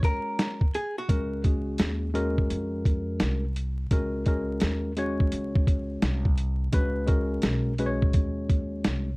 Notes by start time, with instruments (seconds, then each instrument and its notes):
Already playing: tine electric piano G#3 C#4 F#4 C#5
0.03 hollow-body jazz guitar A#4, kick, closed hi-hat
0.39 snare, closed hi-hat
0.61 kick
0.74 hollow-body jazz guitar G#4, closed hi-hat
0.98 hollow-body jazz guitar F#4
1.09 upright bass C#2, tine electric piano G#3 C#4 F#4 A#4, kick, closed hi-hat
1.44 tine electric piano G#3 C#4 F#4 G#4, kick, closed hi-hat
1.78 upright bass D#2, snare, closed hi-hat
2.14 tine electric piano G#3 C#4 F#4 A#4, closed hi-hat
2.38 kick
2.50 upright bass F2, closed hi-hat
2.85 kick, closed hi-hat
3.20 upright bass C2, snare, closed hi-hat
3.56 closed hi-hat
3.91 upright bass C#2, tine electric piano G#3 C#4 F#4 A#4, kick, closed hi-hat
4.26 tine electric piano G#3 C#4 F#4 A#4, kick, closed hi-hat
4.60 upright bass D#2, snare, closed hi-hat
4.97 tine electric piano G#3 C#4 F#4 C#5, closed hi-hat
5.20 kick
5.32 upright bass C#2, closed hi-hat
5.56 kick
5.67 kick, closed hi-hat
6.02 upright bass C2, snare, closed hi-hat
6.25 kick
6.38 closed hi-hat
6.72 upright bass C#2, tine electric piano G#3 C#4 F#4 B4, kick, closed hi-hat
7.06 tine electric piano G#3 C#4 F#4 A#4, kick, closed hi-hat
7.42 upright bass B1, snare, closed hi-hat
7.78 tine electric piano G#3 C#4 F#4 B4, closed hi-hat
7.86 tine electric piano C#5
8.02 kick
8.13 upright bass D#2, kick, closed hi-hat
8.49 kick, closed hi-hat
8.84 upright bass C2, snare, closed hi-hat